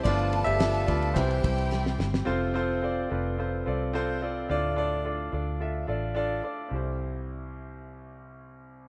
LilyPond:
<<
  \new Staff \with { instrumentName = "Violin section" } { \time 4/4 \key c \major \tempo 4 = 108 <a' a''>2 <g' g''>2 | r1 | r1 | r1 | }
  \new Staff \with { instrumentName = "Grand piano" } { \time 4/4 \key c \major <f' d''>8. <g' e''>8. <f' d''>8 <e' c''>4. r8 | <c' f' a' c''>8 <c' f' a' c''>8 <c' f' a' d''>8 <c' f' a' b'>8 <c' f' a' c''>8 <c' f' a' d''>8 <c' f' a' c''>8 <c' f' a' d''>8 | <d' f' a' d''>8 <d' f' a' d''>8 <d' f' a' d''>8 <d' f' a' d''>8 <d' f' a' e''>8 <d' f' a' d''>8 <d' f' a' d''>8 <d' f' a' d''>8 | <c' e' g' c''>1 | }
  \new Staff \with { instrumentName = "Grand piano" } { \clef bass \time 4/4 \key c \major <f a b>8 r4. <e g c'>4. r8 | c4. r2 r8 | a,4. r2 r8 | c,1 | }
  \new Staff \with { instrumentName = "Steel-string acoustic guitar" } { \time 4/4 \key c \major <g d' f' b'>8 <d' f' b'>8 <g d' f' b'>8 <d' f' b'>8 <c e g c' e' c''>8 <g c' e' c''>8 <g c' e' c''>8 <g c' e' c''>8 | r1 | r1 | r1 | }
  \new Staff \with { instrumentName = "Fingered electric bass" } { \clef bass \time 4/4 \key c \major g,,8. g,,8. d,8 c,8 c,4 g,,8 | f,,4. f,,4 c,4. | d,4. d,4 a,,4 r8 | c,1 | }
  \new DrumStaff \with { instrumentName = "Drums" } \drummode { \time 4/4 <bd cymr>16 cymr16 cymr16 cymr16 <cymr sn>16 cymr16 <bd cymr>16 cymr16 <bd cymr>16 cymr16 <bd cymr>16 cymr16 sn16 sn16 sn16 sn16 | r4 r4 r4 r4 | r4 r4 r4 r4 | r4 r4 r4 r4 | }
>>